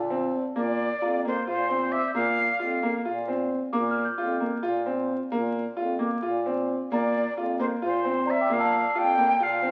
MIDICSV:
0, 0, Header, 1, 5, 480
1, 0, Start_track
1, 0, Tempo, 453858
1, 592, Time_signature, 7, 3, 24, 8
1, 10269, End_track
2, 0, Start_track
2, 0, Title_t, "Celesta"
2, 0, Program_c, 0, 8
2, 0, Note_on_c, 0, 81, 50
2, 0, Note_on_c, 0, 82, 64
2, 0, Note_on_c, 0, 86, 50
2, 0, Note_on_c, 0, 88, 45
2, 198, Note_off_c, 0, 82, 0
2, 346, Note_off_c, 0, 86, 0
2, 491, Note_off_c, 0, 88, 0
2, 676, Note_off_c, 0, 81, 0
2, 1082, Note_on_c, 0, 82, 42
2, 2032, Note_on_c, 0, 86, 49
2, 2198, Note_on_c, 0, 91, 41
2, 2613, Note_off_c, 0, 82, 0
2, 3565, Note_off_c, 0, 86, 0
2, 3708, Note_off_c, 0, 91, 0
2, 3941, Note_on_c, 0, 86, 55
2, 4133, Note_on_c, 0, 89, 46
2, 4279, Note_on_c, 0, 91, 46
2, 5470, Note_off_c, 0, 86, 0
2, 5626, Note_off_c, 0, 89, 0
2, 5760, Note_off_c, 0, 91, 0
2, 6349, Note_on_c, 0, 86, 46
2, 7332, Note_on_c, 0, 82, 60
2, 7893, Note_off_c, 0, 86, 0
2, 8732, Note_on_c, 0, 74, 48
2, 8735, Note_off_c, 0, 82, 0
2, 8748, Note_on_c, 0, 82, 64
2, 8894, Note_on_c, 0, 86, 44
2, 8897, Note_on_c, 0, 79, 47
2, 9077, Note_on_c, 0, 88, 46
2, 9091, Note_on_c, 0, 81, 46
2, 10266, Note_off_c, 0, 74, 0
2, 10269, Note_off_c, 0, 79, 0
2, 10269, Note_off_c, 0, 81, 0
2, 10269, Note_off_c, 0, 82, 0
2, 10269, Note_off_c, 0, 86, 0
2, 10269, Note_off_c, 0, 88, 0
2, 10269, End_track
3, 0, Start_track
3, 0, Title_t, "Flute"
3, 0, Program_c, 1, 73
3, 596, Note_on_c, 1, 74, 78
3, 1277, Note_off_c, 1, 74, 0
3, 1344, Note_on_c, 1, 72, 72
3, 1556, Note_off_c, 1, 72, 0
3, 1566, Note_on_c, 1, 72, 76
3, 2030, Note_on_c, 1, 76, 81
3, 2046, Note_off_c, 1, 72, 0
3, 2261, Note_off_c, 1, 76, 0
3, 2268, Note_on_c, 1, 77, 84
3, 3190, Note_off_c, 1, 77, 0
3, 7311, Note_on_c, 1, 74, 86
3, 7761, Note_off_c, 1, 74, 0
3, 8034, Note_on_c, 1, 72, 67
3, 8098, Note_off_c, 1, 72, 0
3, 8292, Note_on_c, 1, 72, 73
3, 8780, Note_on_c, 1, 76, 83
3, 8796, Note_off_c, 1, 72, 0
3, 9018, Note_on_c, 1, 77, 88
3, 9034, Note_off_c, 1, 76, 0
3, 9503, Note_on_c, 1, 79, 103
3, 9519, Note_off_c, 1, 77, 0
3, 9973, Note_on_c, 1, 77, 84
3, 9989, Note_off_c, 1, 79, 0
3, 10269, Note_off_c, 1, 77, 0
3, 10269, End_track
4, 0, Start_track
4, 0, Title_t, "Grand piano"
4, 0, Program_c, 2, 0
4, 110, Note_on_c, 2, 60, 65
4, 438, Note_off_c, 2, 60, 0
4, 590, Note_on_c, 2, 58, 73
4, 918, Note_off_c, 2, 58, 0
4, 1076, Note_on_c, 2, 65, 67
4, 1240, Note_off_c, 2, 65, 0
4, 1322, Note_on_c, 2, 58, 62
4, 1484, Note_off_c, 2, 58, 0
4, 1556, Note_on_c, 2, 65, 69
4, 1720, Note_off_c, 2, 65, 0
4, 1790, Note_on_c, 2, 60, 59
4, 2116, Note_off_c, 2, 60, 0
4, 2270, Note_on_c, 2, 58, 73
4, 2597, Note_off_c, 2, 58, 0
4, 2745, Note_on_c, 2, 65, 71
4, 2911, Note_off_c, 2, 65, 0
4, 2992, Note_on_c, 2, 58, 70
4, 3156, Note_off_c, 2, 58, 0
4, 3228, Note_on_c, 2, 65, 72
4, 3392, Note_off_c, 2, 65, 0
4, 3469, Note_on_c, 2, 60, 62
4, 3793, Note_off_c, 2, 60, 0
4, 3944, Note_on_c, 2, 58, 85
4, 4268, Note_off_c, 2, 58, 0
4, 4420, Note_on_c, 2, 65, 72
4, 4584, Note_off_c, 2, 65, 0
4, 4657, Note_on_c, 2, 58, 65
4, 4821, Note_off_c, 2, 58, 0
4, 4895, Note_on_c, 2, 65, 81
4, 5059, Note_off_c, 2, 65, 0
4, 5141, Note_on_c, 2, 60, 65
4, 5465, Note_off_c, 2, 60, 0
4, 5623, Note_on_c, 2, 58, 84
4, 5947, Note_off_c, 2, 58, 0
4, 6099, Note_on_c, 2, 65, 74
4, 6262, Note_off_c, 2, 65, 0
4, 6335, Note_on_c, 2, 58, 65
4, 6500, Note_off_c, 2, 58, 0
4, 6583, Note_on_c, 2, 65, 72
4, 6746, Note_off_c, 2, 65, 0
4, 6832, Note_on_c, 2, 60, 62
4, 7157, Note_off_c, 2, 60, 0
4, 7315, Note_on_c, 2, 58, 79
4, 7641, Note_off_c, 2, 58, 0
4, 7799, Note_on_c, 2, 65, 69
4, 7961, Note_off_c, 2, 65, 0
4, 8031, Note_on_c, 2, 58, 66
4, 8195, Note_off_c, 2, 58, 0
4, 8272, Note_on_c, 2, 65, 72
4, 8435, Note_off_c, 2, 65, 0
4, 8512, Note_on_c, 2, 60, 66
4, 8836, Note_off_c, 2, 60, 0
4, 8988, Note_on_c, 2, 58, 79
4, 9311, Note_off_c, 2, 58, 0
4, 9467, Note_on_c, 2, 65, 75
4, 9628, Note_off_c, 2, 65, 0
4, 9707, Note_on_c, 2, 58, 72
4, 9868, Note_off_c, 2, 58, 0
4, 9943, Note_on_c, 2, 65, 76
4, 10105, Note_off_c, 2, 65, 0
4, 10176, Note_on_c, 2, 60, 72
4, 10269, Note_off_c, 2, 60, 0
4, 10269, End_track
5, 0, Start_track
5, 0, Title_t, "Bass clarinet"
5, 0, Program_c, 3, 71
5, 0, Note_on_c, 3, 46, 84
5, 430, Note_off_c, 3, 46, 0
5, 585, Note_on_c, 3, 46, 76
5, 965, Note_off_c, 3, 46, 0
5, 1070, Note_on_c, 3, 41, 77
5, 1449, Note_off_c, 3, 41, 0
5, 1554, Note_on_c, 3, 46, 80
5, 2117, Note_off_c, 3, 46, 0
5, 2265, Note_on_c, 3, 46, 77
5, 2644, Note_off_c, 3, 46, 0
5, 2746, Note_on_c, 3, 41, 76
5, 3124, Note_off_c, 3, 41, 0
5, 3220, Note_on_c, 3, 46, 85
5, 3785, Note_off_c, 3, 46, 0
5, 3948, Note_on_c, 3, 46, 83
5, 4321, Note_off_c, 3, 46, 0
5, 4416, Note_on_c, 3, 41, 76
5, 4792, Note_off_c, 3, 41, 0
5, 4896, Note_on_c, 3, 46, 78
5, 5459, Note_off_c, 3, 46, 0
5, 5626, Note_on_c, 3, 46, 77
5, 5998, Note_off_c, 3, 46, 0
5, 6105, Note_on_c, 3, 41, 80
5, 6479, Note_off_c, 3, 41, 0
5, 6588, Note_on_c, 3, 46, 83
5, 7153, Note_off_c, 3, 46, 0
5, 7307, Note_on_c, 3, 46, 78
5, 7686, Note_off_c, 3, 46, 0
5, 7792, Note_on_c, 3, 41, 75
5, 8168, Note_off_c, 3, 41, 0
5, 8279, Note_on_c, 3, 46, 84
5, 8837, Note_off_c, 3, 46, 0
5, 8990, Note_on_c, 3, 46, 83
5, 9362, Note_off_c, 3, 46, 0
5, 9468, Note_on_c, 3, 41, 77
5, 9841, Note_off_c, 3, 41, 0
5, 9938, Note_on_c, 3, 46, 90
5, 10269, Note_off_c, 3, 46, 0
5, 10269, End_track
0, 0, End_of_file